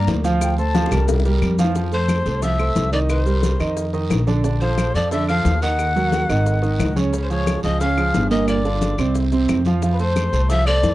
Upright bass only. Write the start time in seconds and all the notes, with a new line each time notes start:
0.07 D2
0.92 C2
1.42 F2
2.26 C2
2.76 C2
3.60 F2
4.10 A#1
4.95 F2
5.45 D#2
6.29 G#1
6.79 C#2
7.64 C#2
8.14 G1
8.98 C2
9.48 F2
10.33 C2
10.83 F2